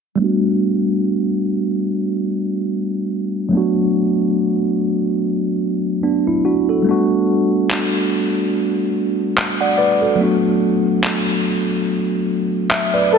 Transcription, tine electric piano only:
0, 0, Header, 1, 2, 480
1, 0, Start_track
1, 0, Key_signature, 1, "major"
1, 0, Tempo, 833333
1, 111, Time_signature, 4, 2, 24, 8
1, 7593, End_track
2, 0, Start_track
2, 0, Title_t, "Tine electric piano"
2, 0, Program_c, 0, 4
2, 89, Note_on_c, 0, 55, 70
2, 101, Note_on_c, 0, 57, 60
2, 114, Note_on_c, 0, 59, 61
2, 126, Note_on_c, 0, 62, 61
2, 138, Note_on_c, 0, 66, 71
2, 233, Control_c, 0, 64, 127
2, 1997, Note_off_c, 0, 55, 0
2, 2003, Note_off_c, 0, 57, 0
2, 2009, Note_off_c, 0, 59, 0
2, 2009, Note_on_c, 0, 54, 69
2, 2015, Note_off_c, 0, 62, 0
2, 2021, Note_off_c, 0, 66, 0
2, 2021, Note_on_c, 0, 57, 61
2, 2032, Note_on_c, 0, 59, 63
2, 2039, Control_c, 0, 64, 0
2, 2044, Note_on_c, 0, 62, 62
2, 2057, Note_on_c, 0, 66, 76
2, 2150, Control_c, 0, 64, 127
2, 3449, Note_off_c, 0, 59, 0
2, 3455, Note_off_c, 0, 62, 0
2, 3461, Note_off_c, 0, 66, 0
2, 3474, Note_on_c, 0, 62, 60
2, 3477, Note_on_c, 0, 59, 53
2, 3605, Note_off_c, 0, 62, 0
2, 3606, Note_off_c, 0, 59, 0
2, 3613, Note_on_c, 0, 64, 65
2, 3708, Note_off_c, 0, 64, 0
2, 3715, Note_on_c, 0, 66, 63
2, 3719, Note_on_c, 0, 62, 52
2, 3845, Note_off_c, 0, 66, 0
2, 3847, Note_off_c, 0, 62, 0
2, 3854, Note_on_c, 0, 69, 55
2, 3858, Note_on_c, 0, 66, 47
2, 3917, Note_off_c, 0, 54, 0
2, 3923, Note_off_c, 0, 57, 0
2, 3931, Note_on_c, 0, 55, 66
2, 3943, Note_on_c, 0, 57, 62
2, 3955, Note_on_c, 0, 59, 63
2, 3959, Control_c, 0, 64, 0
2, 3967, Note_on_c, 0, 62, 67
2, 3973, Note_off_c, 0, 66, 0
2, 3980, Note_on_c, 0, 66, 79
2, 4075, Control_c, 0, 64, 127
2, 4080, Note_off_c, 0, 69, 0
2, 5382, Note_off_c, 0, 66, 0
2, 5533, Note_on_c, 0, 78, 59
2, 5536, Note_on_c, 0, 74, 54
2, 5624, Note_off_c, 0, 74, 0
2, 5627, Note_off_c, 0, 78, 0
2, 5631, Note_on_c, 0, 74, 68
2, 5635, Note_on_c, 0, 71, 55
2, 5763, Note_off_c, 0, 74, 0
2, 5765, Note_off_c, 0, 71, 0
2, 5770, Note_on_c, 0, 69, 55
2, 5774, Note_on_c, 0, 66, 49
2, 5838, Note_off_c, 0, 55, 0
2, 5844, Note_off_c, 0, 57, 0
2, 5847, Note_on_c, 0, 54, 69
2, 5850, Note_off_c, 0, 59, 0
2, 5856, Note_off_c, 0, 62, 0
2, 5859, Note_on_c, 0, 57, 64
2, 5871, Note_on_c, 0, 59, 64
2, 5878, Control_c, 0, 64, 0
2, 5883, Note_on_c, 0, 62, 65
2, 5889, Note_off_c, 0, 66, 0
2, 5896, Note_on_c, 0, 66, 76
2, 5966, Control_c, 0, 64, 127
2, 5998, Note_off_c, 0, 69, 0
2, 7301, Note_off_c, 0, 66, 0
2, 7313, Note_on_c, 0, 76, 62
2, 7444, Note_off_c, 0, 76, 0
2, 7452, Note_on_c, 0, 74, 64
2, 7454, Note_on_c, 0, 71, 56
2, 7545, Note_off_c, 0, 71, 0
2, 7547, Note_off_c, 0, 74, 0
2, 7552, Note_on_c, 0, 71, 62
2, 7593, Note_off_c, 0, 54, 0
2, 7593, Note_off_c, 0, 57, 0
2, 7593, Note_off_c, 0, 59, 0
2, 7593, Note_off_c, 0, 62, 0
2, 7593, Note_off_c, 0, 71, 0
2, 7593, End_track
0, 0, End_of_file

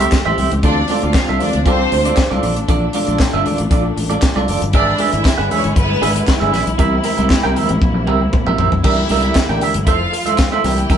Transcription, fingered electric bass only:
0, 0, Header, 1, 2, 480
1, 0, Start_track
1, 0, Tempo, 513259
1, 590, Time_signature, 4, 2, 24, 8
1, 10265, End_track
2, 0, Start_track
2, 0, Title_t, "Fingered electric bass"
2, 0, Program_c, 0, 33
2, 246, Note_on_c, 0, 33, 78
2, 325, Note_off_c, 0, 33, 0
2, 358, Note_on_c, 0, 36, 89
2, 447, Note_off_c, 0, 36, 0
2, 485, Note_on_c, 0, 37, 83
2, 564, Note_off_c, 0, 37, 0
2, 593, Note_on_c, 0, 38, 106
2, 766, Note_off_c, 0, 38, 0
2, 966, Note_on_c, 0, 38, 92
2, 1044, Note_off_c, 0, 38, 0
2, 1206, Note_on_c, 0, 36, 93
2, 1284, Note_off_c, 0, 36, 0
2, 1448, Note_on_c, 0, 38, 82
2, 1551, Note_off_c, 0, 38, 0
2, 1551, Note_on_c, 0, 36, 87
2, 1724, Note_off_c, 0, 36, 0
2, 1798, Note_on_c, 0, 38, 81
2, 1969, Note_off_c, 0, 38, 0
2, 2164, Note_on_c, 0, 36, 83
2, 2243, Note_off_c, 0, 36, 0
2, 2275, Note_on_c, 0, 34, 96
2, 2404, Note_off_c, 0, 34, 0
2, 2404, Note_on_c, 0, 33, 87
2, 2482, Note_off_c, 0, 33, 0
2, 2513, Note_on_c, 0, 34, 100
2, 2686, Note_off_c, 0, 34, 0
2, 2883, Note_on_c, 0, 34, 99
2, 2962, Note_off_c, 0, 34, 0
2, 3123, Note_on_c, 0, 31, 84
2, 3202, Note_off_c, 0, 31, 0
2, 3366, Note_on_c, 0, 33, 90
2, 3444, Note_off_c, 0, 33, 0
2, 3472, Note_on_c, 0, 34, 97
2, 3645, Note_off_c, 0, 34, 0
2, 3715, Note_on_c, 0, 33, 76
2, 3887, Note_off_c, 0, 33, 0
2, 4081, Note_on_c, 0, 36, 79
2, 4161, Note_off_c, 0, 36, 0
2, 4196, Note_on_c, 0, 30, 79
2, 4286, Note_off_c, 0, 30, 0
2, 4322, Note_on_c, 0, 31, 92
2, 4432, Note_off_c, 0, 31, 0
2, 4432, Note_on_c, 0, 32, 103
2, 4605, Note_off_c, 0, 32, 0
2, 4800, Note_on_c, 0, 32, 99
2, 4881, Note_off_c, 0, 32, 0
2, 5039, Note_on_c, 0, 31, 83
2, 5120, Note_off_c, 0, 31, 0
2, 5284, Note_on_c, 0, 32, 76
2, 5364, Note_off_c, 0, 32, 0
2, 5391, Note_on_c, 0, 31, 93
2, 5565, Note_off_c, 0, 31, 0
2, 5635, Note_on_c, 0, 32, 81
2, 5807, Note_off_c, 0, 32, 0
2, 6000, Note_on_c, 0, 31, 84
2, 6081, Note_off_c, 0, 31, 0
2, 6114, Note_on_c, 0, 34, 77
2, 6205, Note_off_c, 0, 34, 0
2, 6242, Note_on_c, 0, 35, 76
2, 6323, Note_off_c, 0, 35, 0
2, 6354, Note_on_c, 0, 36, 104
2, 6527, Note_off_c, 0, 36, 0
2, 6722, Note_on_c, 0, 36, 105
2, 6803, Note_off_c, 0, 36, 0
2, 6966, Note_on_c, 0, 36, 88
2, 7045, Note_off_c, 0, 36, 0
2, 7205, Note_on_c, 0, 33, 87
2, 7285, Note_off_c, 0, 33, 0
2, 7312, Note_on_c, 0, 34, 93
2, 7557, Note_off_c, 0, 34, 0
2, 7557, Note_on_c, 0, 36, 78
2, 7730, Note_off_c, 0, 36, 0
2, 7923, Note_on_c, 0, 34, 76
2, 8004, Note_off_c, 0, 34, 0
2, 8036, Note_on_c, 0, 34, 94
2, 8127, Note_off_c, 0, 34, 0
2, 8159, Note_on_c, 0, 35, 85
2, 8242, Note_off_c, 0, 35, 0
2, 8271, Note_on_c, 0, 36, 89
2, 8446, Note_off_c, 0, 36, 0
2, 8513, Note_on_c, 0, 36, 110
2, 8688, Note_off_c, 0, 36, 0
2, 8879, Note_on_c, 0, 33, 94
2, 8962, Note_off_c, 0, 33, 0
2, 9119, Note_on_c, 0, 31, 84
2, 9231, Note_off_c, 0, 31, 0
2, 9231, Note_on_c, 0, 29, 97
2, 9406, Note_off_c, 0, 29, 0
2, 9954, Note_on_c, 0, 36, 95
2, 10128, Note_off_c, 0, 36, 0
2, 10194, Note_on_c, 0, 36, 115
2, 10265, Note_off_c, 0, 36, 0
2, 10265, End_track
0, 0, End_of_file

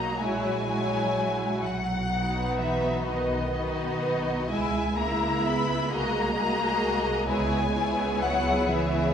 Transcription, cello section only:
0, 0, Header, 1, 2, 480
1, 0, Start_track
1, 0, Key_signature, 5, "major"
1, 0, Tempo, 952381
1, 828, Time_signature, 6, 3, 24, 8
1, 2737, Tempo, 925926
1, 4658, End_track
2, 0, Start_track
2, 0, Title_t, "Cello section"
2, 0, Program_c, 0, 48
2, 0, Note_on_c, 0, 58, 45
2, 98, Note_off_c, 0, 58, 0
2, 98, Note_on_c, 0, 56, 49
2, 826, Note_off_c, 0, 56, 0
2, 826, Note_on_c, 0, 54, 47
2, 1295, Note_off_c, 0, 54, 0
2, 1306, Note_on_c, 0, 52, 46
2, 1545, Note_on_c, 0, 51, 48
2, 1546, Note_off_c, 0, 52, 0
2, 2260, Note_off_c, 0, 51, 0
2, 2264, Note_on_c, 0, 56, 51
2, 2496, Note_off_c, 0, 56, 0
2, 2500, Note_on_c, 0, 58, 55
2, 2739, Note_off_c, 0, 58, 0
2, 2742, Note_on_c, 0, 59, 55
2, 2981, Note_off_c, 0, 59, 0
2, 2983, Note_on_c, 0, 58, 60
2, 3689, Note_off_c, 0, 58, 0
2, 3692, Note_on_c, 0, 56, 59
2, 4162, Note_off_c, 0, 56, 0
2, 4173, Note_on_c, 0, 54, 59
2, 4414, Note_off_c, 0, 54, 0
2, 4416, Note_on_c, 0, 52, 59
2, 4658, Note_off_c, 0, 52, 0
2, 4658, End_track
0, 0, End_of_file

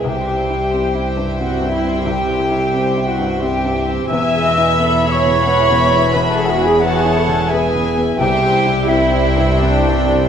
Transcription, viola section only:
0, 0, Header, 1, 2, 480
1, 0, Start_track
1, 0, Tempo, 669643
1, 32, Time_signature, 3, 2, 24, 8
1, 2433, Tempo, 684932
1, 4353, Tempo, 689655
1, 6273, Tempo, 722892
1, 7198, End_track
2, 0, Start_track
2, 0, Title_t, "Viola section"
2, 0, Program_c, 0, 48
2, 35, Note_on_c, 0, 67, 85
2, 983, Note_on_c, 0, 66, 91
2, 985, Note_off_c, 0, 67, 0
2, 1224, Note_off_c, 0, 66, 0
2, 1225, Note_on_c, 0, 64, 88
2, 1461, Note_off_c, 0, 64, 0
2, 1467, Note_on_c, 0, 67, 90
2, 2186, Note_on_c, 0, 66, 85
2, 2191, Note_off_c, 0, 67, 0
2, 2429, Note_off_c, 0, 66, 0
2, 2429, Note_on_c, 0, 67, 94
2, 2921, Note_off_c, 0, 67, 0
2, 2924, Note_on_c, 0, 76, 114
2, 3624, Note_off_c, 0, 76, 0
2, 3635, Note_on_c, 0, 73, 112
2, 4348, Note_on_c, 0, 71, 94
2, 4350, Note_off_c, 0, 73, 0
2, 4469, Note_off_c, 0, 71, 0
2, 4478, Note_on_c, 0, 69, 100
2, 4583, Note_on_c, 0, 66, 111
2, 4593, Note_off_c, 0, 69, 0
2, 4706, Note_off_c, 0, 66, 0
2, 4716, Note_on_c, 0, 68, 103
2, 4832, Note_off_c, 0, 68, 0
2, 4835, Note_on_c, 0, 66, 110
2, 4951, Note_off_c, 0, 66, 0
2, 4958, Note_on_c, 0, 68, 98
2, 5073, Note_off_c, 0, 68, 0
2, 5078, Note_on_c, 0, 69, 103
2, 5315, Note_off_c, 0, 69, 0
2, 5316, Note_on_c, 0, 68, 106
2, 5555, Note_off_c, 0, 68, 0
2, 5786, Note_on_c, 0, 67, 115
2, 6240, Note_off_c, 0, 67, 0
2, 6259, Note_on_c, 0, 64, 106
2, 6736, Note_off_c, 0, 64, 0
2, 6737, Note_on_c, 0, 62, 96
2, 7198, Note_off_c, 0, 62, 0
2, 7198, End_track
0, 0, End_of_file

